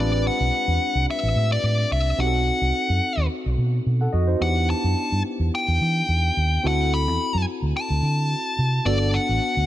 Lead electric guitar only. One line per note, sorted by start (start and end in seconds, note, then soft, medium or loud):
0.00 0.24 D5 medium
0.27 1.05 F#5 medium
1.10 1.52 E5 medium
1.52 1.92 D5 medium
1.92 2.20 E5 medium
2.20 3.27 F#5 medium
4.42 4.68 F#5 medium
4.70 5.21 A5 medium
5.55 6.67 G5 medium
6.67 6.94 F#5 medium
6.94 7.45 B5 medium
7.77 8.90 A5 medium
8.86 9.15 D5 medium
9.14 9.66 F#5 medium